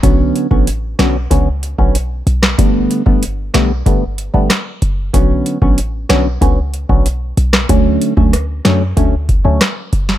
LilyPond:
<<
  \new Staff \with { instrumentName = "Synth stab" } { \clef bass \time 4/4 \key b \minor \tempo 4 = 94 <d fis b cis'>8. <d fis b cis'>16 r8 <d fis b cis'>16 r16 <d fis b cis'>16 r8 <d fis b cis'>16 r4 | <d g a b>8. <d g a b>16 r8 <d g a b>16 r16 <d g a b>16 r8 <d g a b>16 r4 | <d fis b cis'>8. <d fis b cis'>16 r8 <d fis b cis'>16 r16 <d fis b cis'>16 r8 <d fis b cis'>16 r4 | <d fis a cis'>8. <d fis a cis'>16 r8 <d fis a cis'>16 r16 <d fis a cis'>16 r8 <d fis a cis'>16 r4 | }
  \new Staff \with { instrumentName = "808-style bass" } { \clef bass \time 4/4 \key b \minor b,,8 r16 a,,8. b,,8 cis,8. b,,8. b,,8 | g,,8 r16 g,,8. b,,8 g,,8. g,,16 r8 fis,,8 | b,,8 r16 a,,8. b,,8 cis,8. b,,8. b,,8 | d,8 r16 d,8. fis,8 d,8. d,16 r8 fis,,8 | }
  \new DrumStaff \with { instrumentName = "Drums" } \drummode { \time 4/4 <hh bd>8 hh16 bd16 hh8 <hh ss sn>8 <hh bd>8 hh16 bd16 hh8 hh16 <ss sn>16 | <hh bd>8 hh16 bd16 hh8 <hh ss sn>8 <hh bd>8 hh8 <hh ss sn>8 hh8 | <hh bd>8 hh16 bd16 hh8 <hh ss sn>8 <hh bd>8 hh16 bd16 hh8 hh16 <ss sn>16 | <hh bd>8 hh16 bd16 <hh ss>8 <hh ss sn>8 <hh bd>8 <hh bd>8 <hh ss sn>8 hh16 sn16 | }
>>